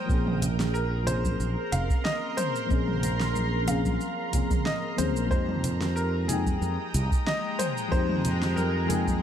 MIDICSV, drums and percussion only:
0, 0, Header, 1, 2, 480
1, 0, Start_track
1, 0, Tempo, 652174
1, 70, Time_signature, 4, 2, 24, 8
1, 6789, End_track
2, 0, Start_track
2, 0, Title_t, "Drums"
2, 68, Note_on_c, 9, 36, 117
2, 73, Note_on_c, 9, 82, 31
2, 142, Note_off_c, 9, 36, 0
2, 146, Note_off_c, 9, 82, 0
2, 199, Note_on_c, 9, 45, 66
2, 273, Note_off_c, 9, 45, 0
2, 309, Note_on_c, 9, 64, 87
2, 311, Note_on_c, 9, 42, 77
2, 313, Note_on_c, 9, 82, 69
2, 383, Note_off_c, 9, 64, 0
2, 385, Note_off_c, 9, 42, 0
2, 387, Note_off_c, 9, 82, 0
2, 440, Note_on_c, 9, 38, 70
2, 442, Note_on_c, 9, 82, 43
2, 514, Note_off_c, 9, 38, 0
2, 515, Note_off_c, 9, 82, 0
2, 552, Note_on_c, 9, 82, 32
2, 625, Note_off_c, 9, 82, 0
2, 790, Note_on_c, 9, 42, 81
2, 790, Note_on_c, 9, 64, 72
2, 791, Note_on_c, 9, 82, 79
2, 863, Note_off_c, 9, 42, 0
2, 863, Note_off_c, 9, 64, 0
2, 865, Note_off_c, 9, 82, 0
2, 917, Note_on_c, 9, 36, 55
2, 920, Note_on_c, 9, 63, 64
2, 920, Note_on_c, 9, 82, 40
2, 991, Note_off_c, 9, 36, 0
2, 994, Note_off_c, 9, 63, 0
2, 994, Note_off_c, 9, 82, 0
2, 1032, Note_on_c, 9, 82, 30
2, 1105, Note_off_c, 9, 82, 0
2, 1270, Note_on_c, 9, 42, 81
2, 1270, Note_on_c, 9, 64, 70
2, 1272, Note_on_c, 9, 82, 74
2, 1343, Note_off_c, 9, 42, 0
2, 1343, Note_off_c, 9, 64, 0
2, 1345, Note_off_c, 9, 82, 0
2, 1397, Note_on_c, 9, 36, 99
2, 1401, Note_on_c, 9, 82, 44
2, 1471, Note_off_c, 9, 36, 0
2, 1475, Note_off_c, 9, 82, 0
2, 1512, Note_on_c, 9, 38, 79
2, 1514, Note_on_c, 9, 82, 35
2, 1586, Note_off_c, 9, 38, 0
2, 1588, Note_off_c, 9, 82, 0
2, 1750, Note_on_c, 9, 42, 74
2, 1750, Note_on_c, 9, 45, 71
2, 1752, Note_on_c, 9, 82, 72
2, 1823, Note_off_c, 9, 42, 0
2, 1823, Note_off_c, 9, 45, 0
2, 1825, Note_off_c, 9, 82, 0
2, 1882, Note_on_c, 9, 82, 40
2, 1955, Note_off_c, 9, 82, 0
2, 1989, Note_on_c, 9, 36, 114
2, 1992, Note_on_c, 9, 82, 31
2, 2062, Note_off_c, 9, 36, 0
2, 2066, Note_off_c, 9, 82, 0
2, 2118, Note_on_c, 9, 45, 65
2, 2191, Note_off_c, 9, 45, 0
2, 2230, Note_on_c, 9, 64, 80
2, 2231, Note_on_c, 9, 42, 76
2, 2233, Note_on_c, 9, 82, 71
2, 2304, Note_off_c, 9, 64, 0
2, 2305, Note_off_c, 9, 42, 0
2, 2307, Note_off_c, 9, 82, 0
2, 2357, Note_on_c, 9, 38, 65
2, 2359, Note_on_c, 9, 82, 39
2, 2431, Note_off_c, 9, 38, 0
2, 2433, Note_off_c, 9, 82, 0
2, 2470, Note_on_c, 9, 63, 55
2, 2470, Note_on_c, 9, 82, 30
2, 2543, Note_off_c, 9, 82, 0
2, 2544, Note_off_c, 9, 63, 0
2, 2707, Note_on_c, 9, 42, 77
2, 2708, Note_on_c, 9, 82, 76
2, 2710, Note_on_c, 9, 64, 74
2, 2780, Note_off_c, 9, 42, 0
2, 2782, Note_off_c, 9, 82, 0
2, 2784, Note_off_c, 9, 64, 0
2, 2837, Note_on_c, 9, 36, 59
2, 2838, Note_on_c, 9, 82, 39
2, 2843, Note_on_c, 9, 63, 68
2, 2910, Note_off_c, 9, 36, 0
2, 2911, Note_off_c, 9, 82, 0
2, 2916, Note_off_c, 9, 63, 0
2, 2949, Note_on_c, 9, 82, 29
2, 3023, Note_off_c, 9, 82, 0
2, 3188, Note_on_c, 9, 36, 98
2, 3188, Note_on_c, 9, 42, 80
2, 3190, Note_on_c, 9, 82, 74
2, 3192, Note_on_c, 9, 64, 71
2, 3262, Note_off_c, 9, 36, 0
2, 3262, Note_off_c, 9, 42, 0
2, 3264, Note_off_c, 9, 82, 0
2, 3266, Note_off_c, 9, 64, 0
2, 3317, Note_on_c, 9, 36, 101
2, 3317, Note_on_c, 9, 45, 69
2, 3319, Note_on_c, 9, 82, 43
2, 3391, Note_off_c, 9, 36, 0
2, 3391, Note_off_c, 9, 45, 0
2, 3393, Note_off_c, 9, 82, 0
2, 3429, Note_on_c, 9, 38, 75
2, 3431, Note_on_c, 9, 82, 32
2, 3502, Note_off_c, 9, 38, 0
2, 3504, Note_off_c, 9, 82, 0
2, 3669, Note_on_c, 9, 42, 79
2, 3671, Note_on_c, 9, 82, 74
2, 3672, Note_on_c, 9, 63, 72
2, 3742, Note_off_c, 9, 42, 0
2, 3744, Note_off_c, 9, 82, 0
2, 3746, Note_off_c, 9, 63, 0
2, 3800, Note_on_c, 9, 82, 39
2, 3874, Note_off_c, 9, 82, 0
2, 3908, Note_on_c, 9, 36, 121
2, 3913, Note_on_c, 9, 82, 29
2, 3982, Note_off_c, 9, 36, 0
2, 3987, Note_off_c, 9, 82, 0
2, 4040, Note_on_c, 9, 45, 72
2, 4113, Note_off_c, 9, 45, 0
2, 4149, Note_on_c, 9, 64, 74
2, 4150, Note_on_c, 9, 42, 77
2, 4152, Note_on_c, 9, 82, 71
2, 4223, Note_off_c, 9, 64, 0
2, 4224, Note_off_c, 9, 42, 0
2, 4226, Note_off_c, 9, 82, 0
2, 4278, Note_on_c, 9, 38, 66
2, 4280, Note_on_c, 9, 82, 40
2, 4352, Note_off_c, 9, 38, 0
2, 4354, Note_off_c, 9, 82, 0
2, 4392, Note_on_c, 9, 82, 31
2, 4465, Note_off_c, 9, 82, 0
2, 4630, Note_on_c, 9, 42, 77
2, 4630, Note_on_c, 9, 64, 67
2, 4632, Note_on_c, 9, 82, 78
2, 4703, Note_off_c, 9, 64, 0
2, 4704, Note_off_c, 9, 42, 0
2, 4705, Note_off_c, 9, 82, 0
2, 4757, Note_on_c, 9, 36, 53
2, 4758, Note_on_c, 9, 63, 67
2, 4761, Note_on_c, 9, 82, 38
2, 4831, Note_off_c, 9, 36, 0
2, 4832, Note_off_c, 9, 63, 0
2, 4835, Note_off_c, 9, 82, 0
2, 4873, Note_on_c, 9, 82, 30
2, 4947, Note_off_c, 9, 82, 0
2, 5111, Note_on_c, 9, 42, 76
2, 5113, Note_on_c, 9, 64, 66
2, 5113, Note_on_c, 9, 82, 70
2, 5184, Note_off_c, 9, 42, 0
2, 5186, Note_off_c, 9, 64, 0
2, 5186, Note_off_c, 9, 82, 0
2, 5237, Note_on_c, 9, 36, 97
2, 5242, Note_on_c, 9, 82, 41
2, 5311, Note_off_c, 9, 36, 0
2, 5316, Note_off_c, 9, 82, 0
2, 5352, Note_on_c, 9, 38, 73
2, 5354, Note_on_c, 9, 82, 33
2, 5426, Note_off_c, 9, 38, 0
2, 5428, Note_off_c, 9, 82, 0
2, 5590, Note_on_c, 9, 42, 76
2, 5590, Note_on_c, 9, 45, 70
2, 5592, Note_on_c, 9, 82, 73
2, 5664, Note_off_c, 9, 42, 0
2, 5664, Note_off_c, 9, 45, 0
2, 5666, Note_off_c, 9, 82, 0
2, 5722, Note_on_c, 9, 82, 39
2, 5796, Note_off_c, 9, 82, 0
2, 5829, Note_on_c, 9, 36, 114
2, 5833, Note_on_c, 9, 82, 30
2, 5902, Note_off_c, 9, 36, 0
2, 5906, Note_off_c, 9, 82, 0
2, 5959, Note_on_c, 9, 45, 76
2, 6032, Note_off_c, 9, 45, 0
2, 6070, Note_on_c, 9, 42, 76
2, 6072, Note_on_c, 9, 82, 68
2, 6073, Note_on_c, 9, 64, 77
2, 6144, Note_off_c, 9, 42, 0
2, 6146, Note_off_c, 9, 82, 0
2, 6147, Note_off_c, 9, 64, 0
2, 6199, Note_on_c, 9, 38, 62
2, 6201, Note_on_c, 9, 82, 39
2, 6273, Note_off_c, 9, 38, 0
2, 6275, Note_off_c, 9, 82, 0
2, 6309, Note_on_c, 9, 63, 56
2, 6311, Note_on_c, 9, 82, 30
2, 6383, Note_off_c, 9, 63, 0
2, 6384, Note_off_c, 9, 82, 0
2, 6546, Note_on_c, 9, 64, 72
2, 6550, Note_on_c, 9, 42, 82
2, 6552, Note_on_c, 9, 82, 70
2, 6620, Note_off_c, 9, 64, 0
2, 6624, Note_off_c, 9, 42, 0
2, 6625, Note_off_c, 9, 82, 0
2, 6677, Note_on_c, 9, 36, 50
2, 6682, Note_on_c, 9, 82, 38
2, 6685, Note_on_c, 9, 63, 57
2, 6751, Note_off_c, 9, 36, 0
2, 6756, Note_off_c, 9, 82, 0
2, 6759, Note_off_c, 9, 63, 0
2, 6789, End_track
0, 0, End_of_file